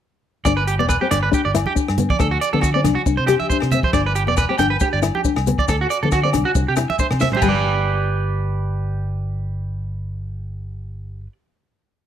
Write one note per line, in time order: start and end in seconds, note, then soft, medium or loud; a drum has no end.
0.45 0.79 G1 medium
0.45 0.60 D4 medium
0.45 0.52 D5 medium
0.45 kick medium
0.45 cross-stick medium
0.45 low agogo medium
0.45 maracas medium
0.57 0.63 B4 medium
0.67 0.74 G4 medium
0.67 closed hi-hat soft
0.79 0.96 E1 medium
0.79 0.94 B3 medium
0.79 0.85 D5 medium
0.79 high conga medium
0.89 0.96 B4 medium
0.89 kick medium
0.89 cross-stick medium
0.89 low agogo medium
0.89 maracas medium
1.01 1.08 C4 medium
1.01 1.07 G4 medium
1.11 1.28 G1 medium
1.11 1.25 D4 medium
1.11 1.18 D5 medium
1.11 cross-stick medium
1.11 closed hi-hat medium
1.11 low conga medium
1.11 low agogo medium
1.11 maracas medium
1.23 1.28 B4 medium
1.32 1.46 D4 medium
1.32 1.40 G4 medium
1.32 kick medium
1.32 maracas medium
1.45 1.62 G1 medium
1.45 1.51 D5 medium
1.54 1.69 E4 medium
1.54 cross-stick medium
1.54 closed hi-hat medium
1.54 low conga medium
1.54 low agogo medium
1.54 maracas medium
1.66 1.72 G4 medium
1.66 high conga medium
1.75 1.90 D4 medium
1.75 kick medium
1.75 maracas medium
1.88 2.05 G2 medium
1.88 cross-stick medium
1.88 low agogo medium
1.98 2.13 B3 medium
1.98 closed hi-hat soft
1.98 low conga medium
1.98 maracas medium
2.10 2.16 D5 medium
2.10 kick medium
2.10 high conga medium
2.19 2.37 D2 medium
2.19 2.34 D4 medium
2.19 2.27 A4 medium
2.19 kick medium
2.19 cross-stick medium
2.19 low agogo medium
2.19 maracas medium
2.31 2.37 F#4 medium
2.41 2.48 D5 medium
2.41 closed hi-hat soft
2.41 maracas medium
2.53 2.87 D3 medium
2.53 2.68 B3 medium
2.53 2.59 A4 medium
2.53 high conga medium
2.61 2.69 F#4 medium
2.61 kick medium
2.61 cross-stick medium
2.61 low agogo medium
2.61 maracas medium
2.74 2.82 C4 medium
2.74 2.80 D5 medium
2.84 2.94 C2 medium
2.84 2.99 D4 medium
2.84 cross-stick medium
2.84 closed hi-hat soft
2.84 high conga medium
2.84 low conga medium
2.84 low agogo medium
2.84 maracas medium
2.95 3.01 F#4 medium
3.06 3.16 C2 loud
3.06 3.21 D4 medium
3.06 kick medium
3.06 maracas medium
3.17 3.35 C3 medium
3.17 3.23 C5 medium
3.27 3.34 G4 medium
3.27 3.43 G4 medium
3.27 cross-stick medium
3.27 closed hi-hat medium
3.27 low conga medium
3.27 low agogo medium
3.27 maracas medium
3.40 3.45 E5 medium
3.40 high conga medium
3.50 3.66 D4 medium
3.50 3.56 C5 medium
3.50 kick medium
3.50 maracas medium
3.60 3.79 C3 medium
3.60 cross-stick medium
3.60 low agogo medium
3.71 3.87 C4 medium
3.71 3.79 E5 medium
3.71 closed hi-hat soft
3.71 low conga medium
3.71 maracas medium
3.83 3.90 C5 medium
3.83 kick medium
3.83 high conga medium
3.93 4.28 G1 medium
3.93 4.08 D4 medium
3.93 4.00 D5 medium
3.93 kick medium
3.93 cross-stick medium
3.93 low agogo medium
3.93 maracas medium
4.06 4.12 B4 medium
4.15 4.22 G4 medium
4.15 closed hi-hat soft
4.15 maracas medium
4.27 4.44 E1 medium
4.27 4.42 B3 medium
4.27 4.34 D5 medium
4.27 high conga medium
4.37 4.44 B4 medium
4.37 kick medium
4.37 cross-stick medium
4.37 low agogo medium
4.37 maracas medium
4.49 4.56 C4 medium
4.49 4.55 G4 medium
4.58 4.76 G1 medium
4.58 4.74 D4 medium
4.58 4.66 G5 medium
4.58 cross-stick medium
4.58 closed hi-hat soft
4.58 high conga medium
4.58 low conga medium
4.58 low agogo medium
4.58 maracas medium
4.70 4.76 B4 medium
4.80 4.95 D4 medium
4.80 4.88 G4 medium
4.80 kick medium
4.80 maracas medium
4.93 5.10 G1 medium
4.93 4.98 D5 medium
5.02 5.17 E4 medium
5.02 cross-stick medium
5.02 closed hi-hat medium
5.02 low conga medium
5.02 low agogo medium
5.02 maracas medium
5.15 5.20 G4 medium
5.15 high conga medium
5.25 5.39 D4 medium
5.25 kick medium
5.25 maracas loud
5.36 5.53 C2 medium
5.36 cross-stick medium
5.36 low agogo medium
5.46 5.61 B3 medium
5.46 closed hi-hat soft
5.46 low conga medium
5.46 maracas medium
5.58 5.64 D5 medium
5.58 kick medium
5.58 high conga medium
5.68 5.84 D2 medium
5.68 5.75 A4 medium
5.68 muted nylon-string guitar stroke medium
5.68 kick medium
5.68 cross-stick medium
5.68 low agogo medium
5.68 maracas medium
5.81 5.86 F#4 medium
5.90 5.97 D5 medium
5.90 closed hi-hat soft
5.90 maracas medium
6.03 6.36 D3 medium
6.03 6.18 B3 medium
6.03 6.08 A4 medium
6.03 high conga medium
6.12 6.19 F#4 medium
6.12 kick medium
6.12 cross-stick medium
6.12 low agogo medium
6.12 maracas medium
6.23 6.30 C4 medium
6.23 6.29 D5 medium
6.33 6.43 C2 medium
6.33 6.48 D4 medium
6.33 cross-stick medium
6.33 closed hi-hat soft
6.33 high conga medium
6.33 low conga medium
6.33 low agogo medium
6.33 maracas medium
6.45 6.51 F#4 medium
6.55 6.64 C2 medium
6.55 6.70 D4 medium
6.55 kick medium
6.55 maracas medium
6.68 6.84 C3 medium
6.68 6.74 G4 medium
6.76 6.91 E4 medium
6.76 muted clean electric guitar stroke medium
6.76 cross-stick medium
6.76 closed hi-hat soft
6.76 low conga medium
6.76 low agogo medium
6.76 maracas medium
6.90 6.95 E5 medium
6.90 high conga medium
6.99 7.14 D4 medium
6.99 7.06 C5 medium
6.99 kick medium
6.99 maracas medium
7.11 7.27 C3 medium
7.11 cross-stick medium
7.11 high conga medium
7.11 low agogo medium
7.20 7.35 C4 medium
7.20 7.27 E5 medium
7.20 snare soft
7.20 low conga medium
7.20 maracas medium
7.32 7.38 C5 medium
7.32 floor tom medium
7.32 high conga medium
7.37 11.20 G4 medium
7.42 11.26 G1 medium
7.42 7.56 G3 medium
7.42 11.26 B4 medium
7.42 kick medium
7.42 crash medium
7.42 high conga medium
7.42 low agogo loud
7.42 maracas medium
7.49 11.32 D5 medium